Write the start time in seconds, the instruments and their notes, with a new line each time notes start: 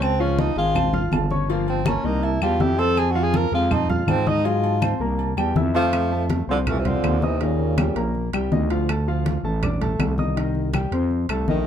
Already playing: fm bass C#2, grand piano C4 C5 C6
0.01 tenor saxophone C4, high conga, low agogo, claves
0.20 grand piano F3 F4 F5, tenor saxophone C#4, high conga
0.38 tenor saxophone D#4, high conga, low timbale, low agogo
0.56 fm bass G#1, grand piano G#3 G#4 G#5, tenor saxophone F4
0.75 grand piano C4 C5 C6, high conga, low conga, low agogo, claves
0.93 grand piano F4 F5 F6, high conga, low conga
1.12 fm bass G1, high conga, low timbale, low agogo, claves
1.31 grand piano C#4 C#5 C#6, high conga
1.49 grand piano F3 F4 F5, tenor saxophone A#3, high conga, low agogo
1.67 tenor saxophone C4, high conga, low agogo
1.86 grand piano A#3 A#4 A#5, tenor saxophone C#4, high conga, low timbale, low agogo, claves
2.04 fm bass C2, grand piano A#3 A#4 A#5, tenor saxophone D#4
2.23 tenor saxophone E4, high conga, low agogo
2.41 fm bass E2, grand piano G3 G4 G5, tenor saxophone F4, high conga, low agogo, claves
2.60 fm bass F2, grand piano E4 E5 E6, tenor saxophone G4, high conga, low timbale
2.78 grand piano C4 C5 C6, tenor saxophone A4, high conga, low agogo
2.97 tenor saxophone G#4, high conga, low agogo, claves
3.11 grand piano F3, tenor saxophone F#4
3.15 grand piano F4 F5, high conga
3.23 tenor saxophone G#4
3.34 tenor saxophone A#4, high conga, low timbale, low agogo
3.52 fm bass F2, grand piano G#3 G#4 G#5, tenor saxophone F4
3.71 grand piano C4 C5 C6, tenor saxophone D#4, high conga, low conga, low agogo, claves
3.89 tenor saxophone G#3, grand piano F4 F5 F6, high conga, low conga
4.07 fm bass G#2, tenor saxophone C4, high conga, low timbale, low agogo, claves
4.27 grand piano D#4 D#5 D#6, tenor saxophone D#4, high conga
4.45 grand piano F#3 G#4 D#5, tenor saxophone F4, high conga, low agogo
4.64 high conga, low agogo
4.82 grand piano C4 C5 C6, high conga, low timbale, low agogo, claves
5.00 fm bass C2, grand piano A#3 A#4 A#5
5.19 high conga, low agogo
5.37 fm bass E2, grand piano G3 G4 G5, high conga, low agogo, claves
5.56 fm bass F2, grand piano E4 E5 E6, high conga, low timbale
5.74 tenor saxophone F3, trombone A3, grand piano C4 C5 C6, high conga, low agogo
5.93 grand piano C4 C5 C6, high conga, high timbale, claves
6.11 grand piano A3 A4 A5, high conga
6.30 high conga, high timbale, low timbale
6.48 fm bass C2, tenor saxophone D3, trombone F3, grand piano C4 C5 C6
6.67 tenor saxophone E3, trombone A3, grand piano F4 F5 F6, high conga, low conga, high timbale, claves
6.78 tenor saxophone C3, trombone E3
6.85 tenor saxophone D3, trombone F3, grand piano C4 C5 C6, high conga, low conga, high timbale
7.03 fm bass D#2, high conga, high timbale, low timbale, claves
7.22 tenor saxophone C3, trombone E3, grand piano D#4 D#5 D#6, high conga
7.41 tenor saxophone A#2, trombone C#3, grand piano D#3 D#4 D#5, high conga, high timbale
7.59 high conga
7.78 grand piano G3 G4 G5, high conga, high timbale, low timbale, claves
7.96 fm bass A#1, grand piano A#3 A#4 A#5, high timbale
8.15 high conga
8.33 fm bass C2, grand piano G3 G4 G5, high conga, high timbale, claves
8.51 fm bass D2, grand piano D#3 D#4 D#5, high conga, low timbale
8.70 grand piano F3 F4 F5, high conga, high timbale
8.89 grand piano A3 A4 A5, high conga, high timbale, claves
9.08 grand piano F3 F4 F5, high conga
9.26 high conga, high timbale, low timbale
9.44 fm bass A1, grand piano A3 A4 A5
9.63 grand piano D4 D5 D6, high conga, low conga, high timbale, claves
9.81 grand piano A3 A4 A5, high conga, low conga, high timbale
9.99 fm bass C2, high conga, high timbale, low timbale, claves
10.18 grand piano D#4 D#5 D#6, high conga
10.37 grand piano D#3 D#4 D#5, high conga, high timbale
10.55 high conga
10.73 grand piano G3 G4 G5, high conga, high timbale, low timbale, claves
10.92 fm bass F2, grand piano C4 C5 C6, high timbale
11.11 high conga
11.29 fm bass C2, grand piano A3 A4 A5, high conga, high timbale, claves
11.48 fm bass A#1, grand piano D#3 D#4 D#5, tenor saxophone D#3, trombone A3, high conga, low timbale